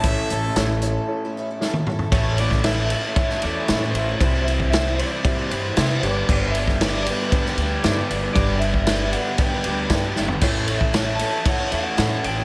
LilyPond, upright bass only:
\new Staff \with { instrumentName = "Upright bass" } { \clef bass \time 4/4 \key a \mixolydian \tempo 4 = 116 a,,8 a,,8 a,,4 r2 | \key a \dorian a,,2 r8 e,8 a,8 a,,8 | c,2 r8 g,8 c8 g,,8 | g,,2 r8 d,8 g,8 g,,8 |
g,,2 r8 d,8 g,8 g,,8 | a,,2 r8 e,8 a,8 a,,8 | }